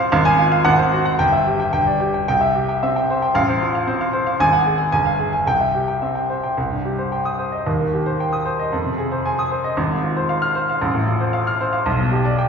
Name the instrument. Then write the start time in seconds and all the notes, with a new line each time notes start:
grand piano
Already playing: A1 C4 F4 C5
0.00 F5
0.12 G#1 F5
0.25 G#5
0.38 F4
0.52 F5
0.65 G#1 F#5
0.78 C5
0.92 F#4
1.05 F#5
1.19 G1 G5
1.32 E5
1.47 G4
1.60 G5
1.73 G1 G5
1.87 D5
2.00 G4
2.14 G5
2.28 C2 G5
2.41 E5
2.56 G4
2.69 G5
2.83 C4 E5
2.96 G5
3.10 C5
3.22 G5
3.35 A1 F5
3.49 C5
3.62 F4
3.75 F5
3.87 C4 C5
4.01 F5
4.13 C5
4.27 F5
4.40 G#1 G#5
4.53 F#5
4.66 G#4
4.78 G#5
4.92 G1 G#5
5.06 F5
5.19 G#4
5.33 G#5
5.47 C2 G5
5.61 E5
5.75 G4
5.88 G5
6.02 C4 E5
6.15 G5
6.30 C5
6.43 G5
6.57 C2
6.71 G2
6.85 G4
6.98 C5
7.12 G5
7.25 D#6
7.39 C5
7.52 D#5
7.67 D#2
7.80 D#3
7.93 G4
8.06 C5
8.20 G5
8.33 D#6
8.45 C5
8.59 D#5
8.72 F2
8.85 C3
8.98 G#4
9.12 C5
9.26 G#5
9.39 D#6
9.51 C5
9.64 D#5
9.77 G#1
9.91 G#2
10.03 F4
10.17 C5
10.29 F5
10.42 F6
10.55 C5
10.69 F5
10.81 A1
10.95 A2
11.08 F4
11.20 C5
11.33 F5
11.47 F6
11.61 C5
11.73 F5
11.86 B1
11.99 B2
12.11 G4
12.25 D5
12.38 G5